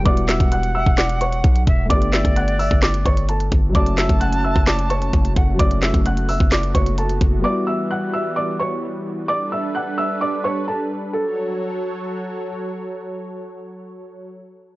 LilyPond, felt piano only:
\new Staff \with { instrumentName = "Felt piano" } { \time 4/4 \key fis \phrygian \tempo 4 = 130 <d'' d'''>8 <e'' e'''>8 <fis'' fis'''>8 <e'' e'''>8 <d'' d'''>8 <cis'' cis'''>4. | <d'' d'''>8 <e'' e'''>8 <fis'' fis'''>8 <e'' e'''>8 <d'' d'''>8 <cis'' cis'''>8 <a' a''>8 r8 | <d'' d'''>8 <e'' e'''>8 <fis'' fis'''>8 <e'' e'''>8 <d'' d'''>8 <cis'' cis'''>4. | <d'' d'''>8 <e'' e'''>8 <fis'' fis'''>8 <e'' e'''>8 <d'' d'''>8 <cis'' cis'''>8 <a' a''>8 r8 |
<d'' d'''>8 <e'' e'''>8 <fis'' fis'''>8 <e'' e'''>8 <d'' d'''>8 <cis'' cis'''>4. | <d'' d'''>8 <e'' e'''>8 <fis'' fis'''>8 <e'' e'''>8 <d'' d'''>8 <cis'' cis'''>8 <a' a''>8 r8 | a'2. r4 | r1 | }